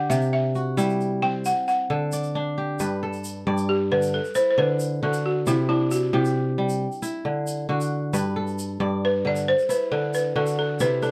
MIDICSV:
0, 0, Header, 1, 4, 480
1, 0, Start_track
1, 0, Key_signature, 1, "major"
1, 0, Tempo, 445434
1, 112, Time_signature, 12, 3, 24, 8
1, 11972, End_track
2, 0, Start_track
2, 0, Title_t, "Balafon"
2, 0, Program_c, 0, 12
2, 0, Note_on_c, 0, 78, 90
2, 104, Note_on_c, 0, 76, 83
2, 121, Note_off_c, 0, 78, 0
2, 215, Note_off_c, 0, 76, 0
2, 356, Note_on_c, 0, 76, 83
2, 803, Note_off_c, 0, 76, 0
2, 1319, Note_on_c, 0, 79, 102
2, 1567, Note_off_c, 0, 79, 0
2, 1571, Note_on_c, 0, 78, 90
2, 1797, Note_off_c, 0, 78, 0
2, 1810, Note_on_c, 0, 78, 78
2, 2254, Note_off_c, 0, 78, 0
2, 3976, Note_on_c, 0, 67, 82
2, 4220, Note_off_c, 0, 67, 0
2, 4222, Note_on_c, 0, 71, 91
2, 4462, Note_on_c, 0, 69, 81
2, 4463, Note_off_c, 0, 71, 0
2, 4690, Note_on_c, 0, 72, 91
2, 4704, Note_off_c, 0, 69, 0
2, 4843, Note_off_c, 0, 72, 0
2, 4856, Note_on_c, 0, 72, 73
2, 4931, Note_off_c, 0, 72, 0
2, 4941, Note_on_c, 0, 71, 95
2, 5383, Note_off_c, 0, 71, 0
2, 5425, Note_on_c, 0, 69, 93
2, 5665, Note_on_c, 0, 66, 76
2, 5666, Note_off_c, 0, 69, 0
2, 5902, Note_on_c, 0, 64, 83
2, 5905, Note_off_c, 0, 66, 0
2, 6118, Note_off_c, 0, 64, 0
2, 6130, Note_on_c, 0, 64, 83
2, 6374, Note_on_c, 0, 66, 82
2, 6379, Note_off_c, 0, 64, 0
2, 6482, Note_off_c, 0, 66, 0
2, 6611, Note_on_c, 0, 64, 73
2, 7528, Note_off_c, 0, 64, 0
2, 9751, Note_on_c, 0, 71, 91
2, 9984, Note_off_c, 0, 71, 0
2, 9991, Note_on_c, 0, 74, 92
2, 10093, Note_off_c, 0, 74, 0
2, 10220, Note_on_c, 0, 72, 94
2, 10452, Note_on_c, 0, 71, 81
2, 10458, Note_off_c, 0, 72, 0
2, 10687, Note_on_c, 0, 69, 87
2, 10693, Note_off_c, 0, 71, 0
2, 10931, Note_off_c, 0, 69, 0
2, 10935, Note_on_c, 0, 71, 71
2, 11150, Note_off_c, 0, 71, 0
2, 11168, Note_on_c, 0, 69, 90
2, 11397, Note_off_c, 0, 69, 0
2, 11410, Note_on_c, 0, 69, 83
2, 11649, Note_on_c, 0, 71, 84
2, 11650, Note_off_c, 0, 69, 0
2, 11881, Note_on_c, 0, 69, 88
2, 11889, Note_off_c, 0, 71, 0
2, 11972, Note_off_c, 0, 69, 0
2, 11972, End_track
3, 0, Start_track
3, 0, Title_t, "Kora"
3, 0, Program_c, 1, 46
3, 0, Note_on_c, 1, 50, 82
3, 0, Note_on_c, 1, 62, 70
3, 0, Note_on_c, 1, 67, 62
3, 0, Note_on_c, 1, 69, 71
3, 0, Note_on_c, 1, 74, 62
3, 106, Note_on_c, 1, 48, 92
3, 166, Note_off_c, 1, 50, 0
3, 560, Note_off_c, 1, 69, 0
3, 576, Note_off_c, 1, 74, 0
3, 595, Note_on_c, 1, 66, 56
3, 660, Note_off_c, 1, 67, 0
3, 832, Note_on_c, 1, 55, 87
3, 835, Note_on_c, 1, 64, 67
3, 1321, Note_on_c, 1, 60, 65
3, 1433, Note_off_c, 1, 62, 0
3, 1613, Note_off_c, 1, 48, 0
3, 1613, Note_off_c, 1, 55, 0
3, 2047, Note_on_c, 1, 50, 81
3, 2049, Note_on_c, 1, 69, 64
3, 2171, Note_off_c, 1, 66, 0
3, 2294, Note_on_c, 1, 74, 63
3, 2524, Note_off_c, 1, 64, 0
3, 2535, Note_on_c, 1, 62, 79
3, 2776, Note_on_c, 1, 67, 60
3, 3016, Note_on_c, 1, 43, 73
3, 3019, Note_on_c, 1, 71, 70
3, 3059, Note_off_c, 1, 50, 0
3, 3084, Note_off_c, 1, 60, 0
3, 3258, Note_off_c, 1, 69, 0
3, 3263, Note_on_c, 1, 69, 69
3, 3488, Note_off_c, 1, 74, 0
3, 3724, Note_off_c, 1, 43, 0
3, 3736, Note_on_c, 1, 43, 80
3, 3737, Note_on_c, 1, 74, 66
3, 4218, Note_on_c, 1, 50, 69
3, 4298, Note_off_c, 1, 67, 0
3, 4344, Note_off_c, 1, 71, 0
3, 4345, Note_off_c, 1, 62, 0
3, 4503, Note_off_c, 1, 43, 0
3, 4504, Note_off_c, 1, 50, 0
3, 4683, Note_off_c, 1, 69, 0
3, 4690, Note_on_c, 1, 64, 61
3, 4931, Note_off_c, 1, 74, 0
3, 4932, Note_on_c, 1, 50, 79
3, 5404, Note_off_c, 1, 50, 0
3, 5416, Note_on_c, 1, 50, 70
3, 5416, Note_on_c, 1, 66, 61
3, 5888, Note_off_c, 1, 64, 0
3, 5892, Note_on_c, 1, 48, 80
3, 5892, Note_on_c, 1, 64, 67
3, 5946, Note_off_c, 1, 50, 0
3, 6131, Note_on_c, 1, 62, 58
3, 6595, Note_off_c, 1, 48, 0
3, 6607, Note_on_c, 1, 48, 84
3, 6612, Note_on_c, 1, 67, 69
3, 6677, Note_off_c, 1, 66, 0
3, 7091, Note_on_c, 1, 55, 68
3, 7386, Note_off_c, 1, 48, 0
3, 7386, Note_off_c, 1, 55, 0
3, 7563, Note_off_c, 1, 64, 0
3, 7568, Note_on_c, 1, 64, 67
3, 7812, Note_on_c, 1, 50, 77
3, 7941, Note_off_c, 1, 62, 0
3, 8134, Note_off_c, 1, 67, 0
3, 8272, Note_off_c, 1, 50, 0
3, 8284, Note_on_c, 1, 50, 68
3, 8291, Note_on_c, 1, 66, 66
3, 8764, Note_on_c, 1, 43, 80
3, 8766, Note_on_c, 1, 71, 78
3, 8823, Note_off_c, 1, 50, 0
3, 9010, Note_on_c, 1, 69, 66
3, 9256, Note_off_c, 1, 64, 0
3, 9472, Note_off_c, 1, 43, 0
3, 9484, Note_on_c, 1, 43, 82
3, 9485, Note_on_c, 1, 74, 69
3, 9548, Note_off_c, 1, 66, 0
3, 9965, Note_on_c, 1, 50, 67
3, 10090, Note_off_c, 1, 71, 0
3, 10258, Note_off_c, 1, 43, 0
3, 10258, Note_off_c, 1, 50, 0
3, 10430, Note_off_c, 1, 69, 0
3, 10442, Note_on_c, 1, 64, 62
3, 10679, Note_off_c, 1, 74, 0
3, 10685, Note_on_c, 1, 50, 76
3, 11147, Note_off_c, 1, 50, 0
3, 11159, Note_on_c, 1, 50, 82
3, 11162, Note_on_c, 1, 66, 58
3, 11637, Note_off_c, 1, 64, 0
3, 11641, Note_on_c, 1, 48, 79
3, 11642, Note_on_c, 1, 64, 73
3, 11691, Note_off_c, 1, 50, 0
3, 11879, Note_on_c, 1, 62, 61
3, 11972, Note_off_c, 1, 48, 0
3, 11972, Note_off_c, 1, 62, 0
3, 11972, Note_off_c, 1, 64, 0
3, 11972, Note_off_c, 1, 66, 0
3, 11972, End_track
4, 0, Start_track
4, 0, Title_t, "Drums"
4, 117, Note_on_c, 9, 82, 55
4, 225, Note_off_c, 9, 82, 0
4, 232, Note_on_c, 9, 82, 17
4, 339, Note_off_c, 9, 82, 0
4, 593, Note_on_c, 9, 82, 18
4, 701, Note_off_c, 9, 82, 0
4, 840, Note_on_c, 9, 82, 60
4, 948, Note_off_c, 9, 82, 0
4, 963, Note_on_c, 9, 82, 16
4, 1071, Note_off_c, 9, 82, 0
4, 1084, Note_on_c, 9, 82, 19
4, 1192, Note_off_c, 9, 82, 0
4, 1562, Note_on_c, 9, 82, 61
4, 1670, Note_off_c, 9, 82, 0
4, 1809, Note_on_c, 9, 82, 20
4, 1917, Note_off_c, 9, 82, 0
4, 2287, Note_on_c, 9, 82, 66
4, 2395, Note_off_c, 9, 82, 0
4, 2407, Note_on_c, 9, 82, 21
4, 2514, Note_off_c, 9, 82, 0
4, 3012, Note_on_c, 9, 82, 62
4, 3120, Note_off_c, 9, 82, 0
4, 3373, Note_on_c, 9, 82, 20
4, 3481, Note_off_c, 9, 82, 0
4, 3493, Note_on_c, 9, 82, 63
4, 3601, Note_off_c, 9, 82, 0
4, 3852, Note_on_c, 9, 82, 41
4, 3960, Note_off_c, 9, 82, 0
4, 4334, Note_on_c, 9, 82, 50
4, 4442, Note_off_c, 9, 82, 0
4, 4576, Note_on_c, 9, 82, 19
4, 4683, Note_off_c, 9, 82, 0
4, 4687, Note_on_c, 9, 82, 65
4, 4794, Note_off_c, 9, 82, 0
4, 5167, Note_on_c, 9, 82, 53
4, 5275, Note_off_c, 9, 82, 0
4, 5531, Note_on_c, 9, 82, 43
4, 5639, Note_off_c, 9, 82, 0
4, 5890, Note_on_c, 9, 82, 61
4, 5997, Note_off_c, 9, 82, 0
4, 6371, Note_on_c, 9, 82, 68
4, 6479, Note_off_c, 9, 82, 0
4, 6736, Note_on_c, 9, 82, 41
4, 6843, Note_off_c, 9, 82, 0
4, 7211, Note_on_c, 9, 82, 52
4, 7319, Note_off_c, 9, 82, 0
4, 7457, Note_on_c, 9, 82, 20
4, 7564, Note_off_c, 9, 82, 0
4, 7573, Note_on_c, 9, 82, 66
4, 7681, Note_off_c, 9, 82, 0
4, 8049, Note_on_c, 9, 82, 59
4, 8157, Note_off_c, 9, 82, 0
4, 8413, Note_on_c, 9, 82, 55
4, 8521, Note_off_c, 9, 82, 0
4, 8769, Note_on_c, 9, 82, 69
4, 8877, Note_off_c, 9, 82, 0
4, 9128, Note_on_c, 9, 82, 18
4, 9236, Note_off_c, 9, 82, 0
4, 9252, Note_on_c, 9, 82, 55
4, 9360, Note_off_c, 9, 82, 0
4, 10084, Note_on_c, 9, 82, 50
4, 10192, Note_off_c, 9, 82, 0
4, 10329, Note_on_c, 9, 82, 19
4, 10437, Note_off_c, 9, 82, 0
4, 10451, Note_on_c, 9, 82, 66
4, 10558, Note_off_c, 9, 82, 0
4, 10926, Note_on_c, 9, 82, 51
4, 11034, Note_off_c, 9, 82, 0
4, 11277, Note_on_c, 9, 82, 43
4, 11385, Note_off_c, 9, 82, 0
4, 11635, Note_on_c, 9, 82, 64
4, 11742, Note_off_c, 9, 82, 0
4, 11879, Note_on_c, 9, 82, 19
4, 11972, Note_off_c, 9, 82, 0
4, 11972, End_track
0, 0, End_of_file